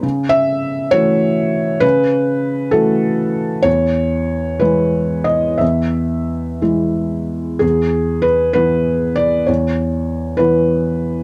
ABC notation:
X:1
M:6/8
L:1/8
Q:3/8=65
K:E
V:1 name="Felt piano"
z e2 c3 | B3 A3 | c3 B2 d | e3 z3 |
[K:Emix] G2 B B2 d | c3 B3 |]
V:2 name="Felt piano" clef=bass
C,3 [E,A,F]3 | C,3 [E,A,F]3 | E,,3 [E,G,E]3 | E,,3 [E,G,E]3 |
[K:Emix] E,,3 [E,B,E]3 | E,,3 [E,B,E]3 |]